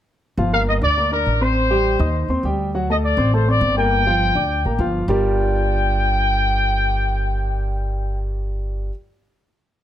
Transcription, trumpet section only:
0.53 0.59 F5 loud
0.68 0.74 D#5 medium
0.83 1.10 D5 loud
1.12 1.39 A#4 medium
1.42 2.30 C5 medium
2.90 2.96 D#5 medium
3.04 3.31 D5 medium
3.34 3.47 C5 medium
3.49 3.78 D5 loud
3.77 4.90 G5 loud
5.09 8.19 G5 medium

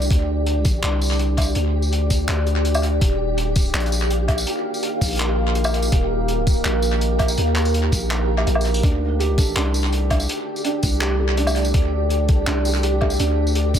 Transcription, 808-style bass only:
0.11 0.82 D2 medium
0.83 1.55 C2 loud
1.56 2.27 D2 medium
2.29 3.00 D2 medium
3.01 3.73 D#1 medium
3.74 4.45 A#1 medium
5.01 5.91 A#1 medium
5.92 6.64 D#1 medium
6.65 7.36 A#1 loud
7.38 7.91 D#2 loud
7.92 8.45 A#1 loud
8.47 8.82 A#1 loud
8.83 9.55 D2 medium
9.56 10.27 C2 medium
10.83 11.73 C2 medium
11.74 12.24 D2 medium
12.24 12.45 C#2 medium
12.47 13.18 C2 medium
13.20 13.79 D2 loud

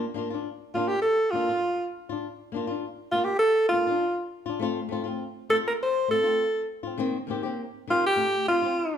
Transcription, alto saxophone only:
0.75 0.89 F4 medium
0.88 1.01 G4 medium
1.01 1.32 A4 loud
1.31 1.92 F4 medium
3.12 3.26 F4 medium
3.25 3.38 G4 medium
3.39 3.68 A4 loud
3.69 4.26 F4 medium
5.50 5.57 A4 loud
5.68 5.73 A#4 medium
5.83 6.09 C5 loud
6.11 6.65 A4 loud
7.90 8.03 F4 medium
8.06 8.45 G4 loud
8.48 8.98 F4 medium

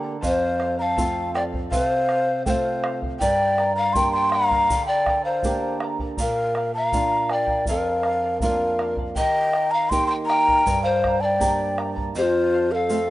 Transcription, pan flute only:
0.26 0.77 C5 medium
0.81 1.32 F5 medium
1.36 1.44 D5 medium
1.74 1.85 B4 medium
1.85 2.43 C5 medium
2.47 2.99 C5 medium
3.21 3.73 D5 medium
3.78 3.98 F5 medium
3.96 4.14 G5 medium
4.15 4.34 G5 medium
4.32 4.87 F5 medium
4.88 5.23 D5 medium
5.25 5.77 C5 medium
6.21 6.72 A#4 medium
6.77 7.34 F5 medium
7.32 7.69 D5 medium
7.70 8.40 A#4 medium
8.43 8.95 A#4 medium
9.17 9.75 D#5 medium
9.73 9.93 F5 medium
9.91 10.09 G5 medium
10.10 10.16 G5 medium
10.29 10.81 G5 medium
10.84 11.24 C5 medium
11.22 11.78 D5 medium
12.17 12.75 C5 medium
12.73 13.10 F5 medium

